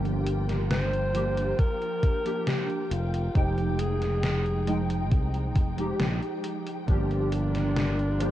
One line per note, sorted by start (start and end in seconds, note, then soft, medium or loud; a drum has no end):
0.00 1.52 G1 medium
0.00 1.09 F3 medium
0.00 1.09 A#3 medium
0.00 1.10 D4 medium
0.00 2.88 F4 medium
0.00 1.10 G4 loud
0.00 2.88 A#4 medium
0.00 8.31 G5 medium
0.05 closed hi-hat soft
0.26 closed hi-hat medium
0.49 snare soft
0.49 closed hi-hat soft
0.71 1.61 C5 loud
0.71 snare loud
0.71 closed hi-hat soft
0.93 closed hi-hat soft
1.13 2.19 F3 medium
1.13 2.20 A#3 medium
1.13 2.20 D4 medium
1.13 2.21 G4 loud
1.13 closed hi-hat medium
1.37 closed hi-hat soft
1.59 2.49 A#4 loud
1.59 kick loud
1.59 closed hi-hat soft
1.82 closed hi-hat soft
2.03 kick loud
2.03 closed hi-hat medium
2.25 2.88 F3 medium
2.25 2.88 A#3 medium
2.25 2.89 D4 medium
2.25 2.89 G4 loud
2.25 closed hi-hat soft
2.47 2.93 G4 medium
2.47 snare loud
2.47 closed hi-hat soft
2.70 closed hi-hat soft
2.91 3.27 F1 medium
2.91 6.84 G#3 medium
2.91 6.84 D#4 medium
2.91 3.37 F4 medium
2.91 closed hi-hat medium
3.14 closed hi-hat soft
3.34 5.12 F1 medium
3.34 4.62 F3 medium
3.34 4.62 G#3 medium
3.34 4.63 D#4 medium
3.34 3.81 G4 medium
3.34 4.63 G5 loud
3.34 kick loud
3.34 closed hi-hat soft
3.58 closed hi-hat soft
3.79 5.12 G#4 loud
3.79 closed hi-hat medium
4.02 snare soft
4.02 closed hi-hat soft
4.23 snare loud
4.23 closed hi-hat soft
4.46 closed hi-hat soft
4.66 5.72 F3 medium
4.66 5.73 G#3 medium
4.66 5.73 D#4 medium
4.66 5.74 G5 loud
4.66 closed hi-hat medium
4.90 closed hi-hat soft
5.11 5.56 C2 medium
5.11 kick loud
5.11 closed hi-hat soft
5.34 closed hi-hat soft
5.56 5.92 F1 medium
5.56 kick loud
5.56 closed hi-hat medium
5.77 6.82 F3 medium
5.77 6.83 G#3 medium
5.77 6.83 D#4 medium
5.77 6.84 G4 loud
5.77 closed hi-hat soft
6.00 6.18 A#1 medium
6.00 snare loud
6.00 closed hi-hat soft
6.22 closed hi-hat soft
6.44 closed hi-hat medium
6.67 closed hi-hat soft
6.87 8.31 G1 loud
6.87 8.15 F3 medium
6.87 8.15 A#3 medium
6.87 8.31 D4 loud
6.87 8.16 D4 medium
6.87 8.31 F4 medium
6.87 8.16 G4 loud
6.87 8.31 A#4 medium
6.87 kick loud
6.87 closed hi-hat soft
7.11 closed hi-hat soft
7.32 closed hi-hat medium
7.55 snare soft
7.55 closed hi-hat soft
7.76 snare loud
7.76 closed hi-hat soft
7.99 closed hi-hat soft
8.19 8.31 F3 medium
8.19 8.31 A#3 medium
8.19 8.31 D4 medium
8.19 8.31 G4 loud
8.19 closed hi-hat medium